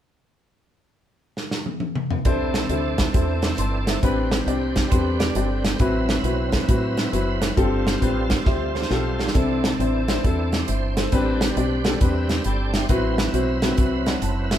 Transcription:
1.37 snare
1.51 snare
1.66 high tom
1.80 high tom
1.96 mid tom
2.11 floor tom
2.25 fingered electric bass C2, upright piano C3 D4 E4 A4 C5, tonewheel organ E3 C4 D4 A4, kick, closed hi-hat
2.54 snare, closed hi-hat
2.69 fingered electric bass D2, upright piano D4 E4 A4 C5, closed hi-hat
2.98 kick, snare, closed hi-hat
3.13 fingered electric bass E2, upright piano D4 E4 A4 C5, kick, closed hi-hat
3.42 snare, closed hi-hat
3.58 fingered electric bass G1, upright piano A5 C6, closed hi-hat
3.87 upright piano C5 E5, snare, closed hi-hat
4.03 fingered electric bass A1, upright piano A2 C4 D4 G4 B4, tonewheel organ G3 B3 D4 B4, kick, closed hi-hat
4.10 tonewheel organ C4
4.31 snare, closed hi-hat
4.46 fingered electric bass C2, upright piano C4 D4 G4 D5, closed hi-hat
4.76 kick, snare, closed hi-hat
4.91 fingered electric bass E2, upright piano C4 D4 G4 B4, clean electric guitar A4 C5, kick, closed hi-hat
5.20 clean electric guitar B4 D5, snare, closed hi-hat
5.35 fingered electric bass G1, upright piano C4 D4 G4 D5, clean electric guitar A4, closed hi-hat
5.65 snare, closed hi-hat
5.79 fingered electric bass A1, upright piano A2 C4 E4 F#4 B4, tonewheel organ F#3 C4 E4 B4, kick, closed hi-hat
6.09 snare, closed hi-hat
6.23 fingered electric bass B1, upright piano C4 E4 F#4 B4, closed hi-hat
6.52 kick, snare, closed hi-hat
6.68 fingered electric bass A2, upright piano C4 E4 F#4 B4, kick, closed hi-hat
6.97 snare, closed hi-hat
7.12 fingered electric bass F#1, upright piano C4 E4 F#4 B4, closed hi-hat
7.42 snare, closed hi-hat
7.56 fingered electric bass G1, upright piano G2 C4 F4 G4 A4, tonewheel organ G3 C4 F4 A4, kick, closed hi-hat
7.87 snare, closed hi-hat
8.01 fingered electric bass A1, upright piano C4 F4 G4 B4, kick, closed hi-hat
8.30 kick, snare, closed hi-hat
8.45 fingered electric bass D2, upright piano C4 F4 G4 C5, clean electric guitar C5 E5, kick, snare
8.75 clean electric guitar A4 C5, snare
8.82 snare
8.90 fingered electric bass B1, upright piano C4 F4 G4 A4, clean electric guitar F4 A4, snare
9.19 snare
9.28 snare
9.34 fingered electric bass C2, upright piano C3 C4 D4 E4 A4, tonewheel organ E3 C4 D4 A4, kick, closed hi-hat
9.64 snare, closed hi-hat
9.79 fingered electric bass A1, upright piano C4 D4 E4 C5, closed hi-hat
10.08 upright piano C4 D4 E4 C5, snare, closed hi-hat
10.24 fingered electric bass E2, upright piano C4 D4 E4 A4, kick, closed hi-hat
10.52 tonewheel organ G4, snare, closed hi-hat
10.67 fingered electric bass G1, tonewheel organ C5, upright piano C5 E5, closed hi-hat
10.97 tonewheel organ A4, upright piano A4 C5, snare, closed hi-hat
11.12 fingered electric bass A1, upright piano A2 C4 D4 G4 B4, tonewheel organ G3 C4 D4 B4, kick, closed hi-hat
11.41 snare, closed hi-hat
11.56 fingered electric bass B1, upright piano C4 D4 G4 D5, closed hi-hat
11.84 upright piano C4 D4 G4 A4, tonewheel organ D5, snare, closed hi-hat
12.00 fingered electric bass E2, upright piano C4 D4 G4 B4, tonewheel organ E5, kick, closed hi-hat
12.29 snare, closed hi-hat
12.44 fingered electric bass G1, tonewheel organ A4 G5, upright piano G5 B5, closed hi-hat
12.74 tonewheel organ C5, upright piano E5 G5, snare, closed hi-hat
12.89 fingered electric bass A1, upright piano A2 C4 E4 F#4 B4, tonewheel organ F#3 C4 E4 B4, kick, closed hi-hat
13.18 snare, closed hi-hat
13.33 fingered electric bass B1, upright piano C4 E4 F#4 C5, closed hi-hat
13.62 upright piano C4 E4 F#4 B4, snare, closed hi-hat
13.78 fingered electric bass C2, upright piano C4 E4 F#4 B4, kick, closed hi-hat
14.06 upright piano D5 F#5, snare, closed hi-hat
14.22 fingered electric bass F#1, upright piano F#5 A5, closed hi-hat
14.51 upright piano C5 E5, snare, closed hi-hat

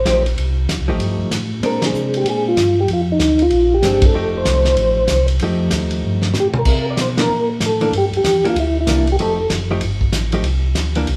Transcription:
Already playing: tonewheel organ C5
0.05 tonewheel organ A#1, hollow-body jazz guitar F3 A3 D#4 G4, snare, hi-hat pedal, ride
0.26 ride
0.36 tonewheel organ C2, ride
0.68 tonewheel organ D#2, snare, hi-hat pedal, ride
0.79 tonewheel organ C2
0.88 tonewheel organ A1, hollow-body jazz guitar F3 A3 D#4 G4
0.99 tonewheel organ G2, ride
1.18 tonewheel organ G2
1.30 tonewheel organ A2, snare, hi-hat pedal, ride
1.60 tonewheel organ A#2, hollow-body jazz guitar G#3 C4 D4, ride
1.66 tonewheel organ A#4
1.82 snare, ride
1.86 tonewheel organ G#4
1.93 tonewheel organ C3, hi-hat pedal
2.14 tonewheel organ G4, ride
2.24 tonewheel organ A#2, ride
2.30 tonewheel organ G#4
2.48 tonewheel organ F4
2.56 tonewheel organ G2, snare, hi-hat pedal, ride
2.80 tonewheel organ G4
2.88 tonewheel organ F2, ride
2.93 tonewheel organ F4
3.12 tonewheel organ D#4
3.19 tonewheel organ D2, snare, hi-hat pedal, ride
3.39 tonewheel organ F4, ride
3.50 tonewheel organ A#1, ride
3.74 tonewheel organ G4
3.82 tonewheel organ G1, hollow-body jazz guitar G#3 C4 D4, snare, hi-hat pedal, ride
4.02 tonewheel organ A4, kick, ride
4.14 tonewheel organ F1, hollow-body jazz guitar F3 A3 D#4 G4
4.37 tonewheel organ C5
4.45 tonewheel organ C2, snare, hi-hat pedal, ride
4.65 snare, ride
4.77 tonewheel organ A1, ride
5.08 tonewheel organ C2, snare, hi-hat pedal, ride
5.28 ride
5.39 tonewheel organ F2, hollow-body jazz guitar F3 A3, ride
5.44 hollow-body jazz guitar D#4 G4
5.71 tonewheel organ D#2, snare, hi-hat pedal, ride
5.91 ride
6.04 tonewheel organ G2
6.22 snare
6.34 tonewheel organ A2, snare, hi-hat pedal
6.40 tonewheel organ G4
6.54 tonewheel organ A2, mid tom
6.59 tonewheel organ A#4
6.65 tonewheel organ C3, kick, crash
6.90 tonewheel organ D5
6.97 tonewheel organ B2, snare, hi-hat pedal, ride
7.01 tonewheel organ C5
7.17 hollow-body jazz guitar E3 A#3 D4, snare, ride
7.22 tonewheel organ A#4
7.30 tonewheel organ A#2
7.60 tonewheel organ A2, snare, hi-hat pedal, ride
7.66 tonewheel organ A4
7.81 hollow-body jazz guitar E3 A#3 D4, ride
7.91 tonewheel organ G2, ride
7.98 tonewheel organ G4
8.12 tonewheel organ G2, ride
8.17 tonewheel organ G4
8.24 tonewheel organ E2, snare, hi-hat pedal, ride
8.45 hollow-body jazz guitar E3 A#3 D4, ride
8.50 tonewheel organ F4
8.56 tonewheel organ D2, ride
8.60 tonewheel organ E4
8.81 tonewheel organ E4
8.87 tonewheel organ C2, hollow-body jazz guitar E3 A#3 D4, snare, hi-hat pedal, ride
9.07 ride
9.12 tonewheel organ G4
9.19 tonewheel organ F1 A4, hollow-body jazz guitar F3 A3 D#4 G4, ride
9.49 tonewheel organ F#1, snare, hi-hat pedal, ride
9.71 hollow-body jazz guitar F3 A3 D#4 G4
9.81 tonewheel organ G1, ride
10.01 kick
10.12 tonewheel organ A1, snare, hi-hat pedal, ride
10.32 hollow-body jazz guitar F3 A3 D#4 G4, ride
10.43 tonewheel organ C2, ride
10.75 tonewheel organ D2, snare, hi-hat pedal, ride
10.95 hollow-body jazz guitar E3 A#3 D4, ride
11.07 tonewheel organ C2, ride

